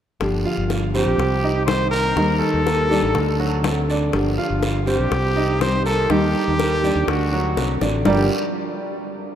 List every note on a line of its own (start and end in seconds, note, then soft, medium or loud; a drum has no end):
0.20 0.44 G1 medium
0.20 0.93 D3 medium
0.20 0.94 F3 medium
0.20 0.94 A#3 medium
0.20 0.93 D4 medium
0.20 0.93 G4 medium
0.20 high bongo medium
0.20 long guiro medium
0.45 0.85 F4 medium
0.45 0.86 F5 medium
0.58 1.04 G1 medium
0.70 high bongo medium
0.70 short guiro medium
0.94 1.19 F3 medium
0.94 1.18 A#3 soft
0.94 1.35 C4 medium
0.94 1.18 D4 medium
0.94 1.18 G4 medium
0.94 1.64 G4 loud
0.94 1.35 C5 medium
0.94 short guiro medium
1.06 1.17 A#1 medium
1.18 2.13 C2 loud
1.18 muted nylon-string guitar stroke medium
1.18 high bongo medium
1.18 long guiro medium
1.44 1.84 D#4 medium
1.44 1.84 D#5 medium
1.66 2.15 D#3 medium
1.66 2.16 G3 soft
1.66 2.17 C4 medium
1.66 2.17 G4 soft
1.66 1.90 C5 loud
1.66 high bongo medium
1.66 low bongo medium
1.66 short guiro medium
1.91 2.13 A#3 medium
1.91 2.40 A#4 loud
1.91 2.13 A#4 medium
1.91 short guiro medium
2.16 2.40 D#2 medium
2.16 2.89 D#3 medium
2.16 2.57 D#3 medium
2.16 2.90 G3 medium
2.16 2.90 A#3 medium
2.16 2.58 D#4 medium
2.16 2.89 D#4 medium
2.16 2.88 G4 medium
2.16 high bongo medium
2.16 long guiro medium
2.39 3.88 A4 loud
2.39 high bongo soft
2.54 3.01 D#2 medium
2.66 2.86 A#3 medium
2.66 2.86 A#4 medium
2.66 high bongo medium
2.66 short guiro medium
2.89 3.13 G3 medium
2.89 3.14 A#3 medium
2.89 3.31 D4 medium
2.89 3.14 D#4 medium
2.89 3.14 G4 medium
2.89 3.31 D5 medium
2.89 high bongo soft
2.89 short guiro medium
3.03 3.15 A1 medium
3.14 4.10 D2 loud
3.14 muted nylon-string guitar stroke medium
3.14 high bongo medium
3.14 long guiro medium
3.40 3.80 F#3 medium
3.40 3.80 F#4 medium
3.40 high bongo soft
3.62 4.11 D3 medium
3.62 4.12 A3 soft
3.62 4.12 C4 medium
3.62 4.12 F#4 medium
3.62 high bongo medium
3.62 low bongo medium
3.62 short guiro medium
3.89 4.30 D4 medium
3.89 4.30 D5 medium
3.89 short guiro medium
4.12 4.37 G1 medium
4.12 4.86 D3 medium
4.12 4.86 F3 medium
4.12 4.86 A#3 medium
4.12 4.86 D4 medium
4.12 4.85 G4 medium
4.12 high bongo medium
4.12 long guiro medium
4.38 4.78 F4 medium
4.38 4.78 F5 medium
4.50 4.97 G1 medium
4.63 high bongo medium
4.63 short guiro medium
4.86 5.11 F3 medium
4.86 5.11 A#3 medium
4.86 5.27 C4 medium
4.86 5.11 D4 medium
4.86 5.10 G4 medium
4.86 5.62 G4 loud
4.86 5.28 C5 medium
4.86 short guiro medium
4.99 5.11 B1 loud
5.11 6.06 C2 loud
5.11 muted nylon-string guitar stroke medium
5.11 high bongo medium
5.11 long guiro medium
5.36 5.77 D#4 medium
5.36 5.77 D#5 medium
5.60 6.08 D#3 soft
5.60 6.09 G3 soft
5.60 6.09 C4 medium
5.60 6.10 G4 medium
5.60 5.84 C5 loud
5.60 high bongo medium
5.60 low bongo medium
5.60 short guiro medium
5.85 6.06 A#3 medium
5.85 6.12 A4 loud
5.85 6.06 A#4 medium
5.85 short guiro medium
6.09 6.33 D#2 loud
6.09 6.82 D#3 medium
6.09 6.50 D#3 medium
6.09 6.83 G3 medium
6.09 6.83 A#3 medium
6.09 6.50 D#4 medium
6.09 6.82 D#4 medium
6.09 7.11 G4 loud
6.09 6.81 G4 medium
6.09 high bongo medium
6.09 long guiro medium
6.35 high bongo soft
6.48 6.94 D#2 medium
6.59 6.79 A#3 medium
6.59 6.79 A#4 medium
6.59 high bongo medium
6.59 short guiro medium
6.83 7.07 G3 medium
6.83 7.07 A#3 medium
6.83 7.24 D4 medium
6.83 7.07 D#4 medium
6.83 7.07 G4 medium
6.83 7.24 D5 medium
6.83 high bongo soft
6.83 short guiro medium
6.96 7.07 D#2 loud
7.07 7.55 D2 loud
7.07 7.82 F#4 medium
7.07 muted nylon-string guitar stroke medium
7.07 high bongo medium
7.07 long guiro medium
7.32 7.73 F#3 medium
7.32 7.73 F#4 medium
7.32 high bongo soft
7.57 7.79 C2 medium
7.57 8.05 D3 medium
7.57 8.05 A3 medium
7.57 8.05 C4 medium
7.57 8.06 F#4 medium
7.57 high bongo medium
7.57 short guiro medium
7.81 8.03 A1 loud
7.81 8.02 D4 medium
7.81 8.02 D5 medium
7.81 low bongo medium
7.81 short guiro medium
8.05 8.29 G1 medium
8.05 8.26 G2 medium
8.05 8.26 D3 medium
8.05 8.26 F3 medium
8.05 8.28 G3 medium
8.05 8.26 A#3 medium
8.05 8.29 D4 medium
8.05 8.26 D4 medium
8.05 8.29 F4 medium
8.05 8.29 G4 medium
8.05 8.27 G4 medium
8.05 8.29 A#4 medium
8.05 8.29 D5 loud
8.05 low bongo medium
8.05 long guiro loud